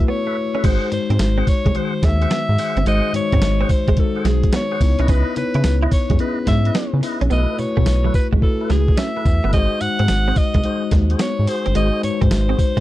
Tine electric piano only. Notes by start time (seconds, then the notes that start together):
Already playing: A3 E4 F#4 B4
0.64 G#3 D#4 F#4 C5
0.92 G#3 D#4 F#4 C5
1.75 D#3 G#3 F#4 C5
2.87 G#3 D#4 F#4 C5
3.14 G#3 D#4 F#4
3.98 G#3 D#4 F#4 C5
4.80 B3 D#4 E4 C#5
5.36 B3 D#4 E4 C#5
6.19 B3 C#4 E4 G#4
7.30 A3 E4 F#4 B4
7.58 A3 E4 F#4 B4
8.41 A3 E4 F#4 B4
9.53 G#3 D#4 F#4 C5
9.81 G#3 D#4 F#4 C5
10.64 G#3 D#4 F#4 C5
11.75 G#3 D#4 F#4 C5
12.02 G#3 D#4 F#4 B4
12.10 C5